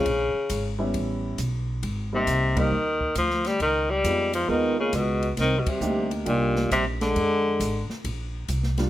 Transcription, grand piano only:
0.79 1.36 G3 medium
0.79 1.36 B3 medium
0.79 1.36 C#4 medium
0.79 1.36 E4 medium
2.13 2.54 G3 medium
2.13 2.54 A#3 medium
2.13 2.54 C4 soft
2.13 2.55 D#4 medium
2.56 2.70 G3 medium
2.56 2.70 A#3 medium
2.56 2.71 C4 medium
2.56 2.71 D#4 medium
4.05 4.46 G#3 soft
4.05 4.47 B3 soft
4.05 4.47 D#4 soft
4.05 4.48 F4 medium
4.48 5.17 G#3 medium
4.48 5.17 B3 soft
4.48 5.17 D#4 medium
4.48 5.17 F4 medium
5.81 6.24 A#3 medium
5.81 6.24 D4 medium
5.81 6.25 D#4 medium
5.81 6.25 G4 medium
6.25 6.94 A#3 medium
6.25 6.94 D4 medium
6.25 6.95 D#4 medium
6.25 6.95 G4 medium
8.78 8.90 G3 medium
8.78 8.90 A#3 medium
8.78 8.90 D4 medium
8.78 8.90 F4 medium

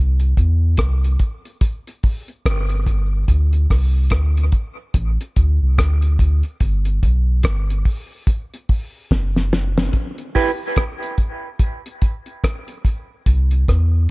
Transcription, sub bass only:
0.00 0.34 C2 loud
0.38 0.76 E2 loud
0.79 1.17 C2 loud
2.46 3.25 G1 medium
3.29 3.67 D2 loud
3.71 4.09 C2 medium
4.12 4.50 D2 medium
4.95 5.18 A1 loud
5.37 5.60 D2 loud
5.62 5.77 C2 medium
5.79 6.17 D2 loud
6.20 6.43 D2 loud
6.61 7.00 G1 loud
7.04 7.42 B1 medium
7.45 7.83 G1 loud
9.11 9.90 F#1 medium
13.27 13.65 C2 loud
13.69 14.07 E2 medium

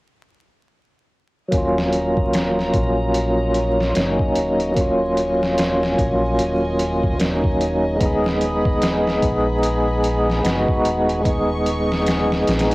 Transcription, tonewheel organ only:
1.48 3.90 F#3 medium
1.48 3.91 A#3 medium
1.54 3.93 C#4 medium
1.54 3.94 F4 medium
3.93 4.70 F#3 medium
3.93 4.73 A#3 medium
3.93 4.73 C#4 medium
3.98 4.74 D#4 medium
4.71 7.13 F#3 medium
4.71 7.15 A#3 medium
4.77 7.16 C#4 medium
4.77 7.18 F4 medium
7.18 7.96 F#3 medium
7.18 7.97 A#3 medium
7.18 7.98 C#4 medium
7.23 7.99 D#4 medium
7.96 10.38 G#3 medium
7.96 10.39 B3 medium
8.03 10.41 D#4 medium
8.03 10.43 G#4 medium
10.41 11.19 G#3 medium
10.41 11.21 B3 medium
10.41 11.22 D#4 medium
10.46 11.22 F#4 medium
11.20 12.75 G#3 medium
11.20 12.75 B3 medium
11.26 12.75 D#4 medium
11.26 12.75 G#4 medium

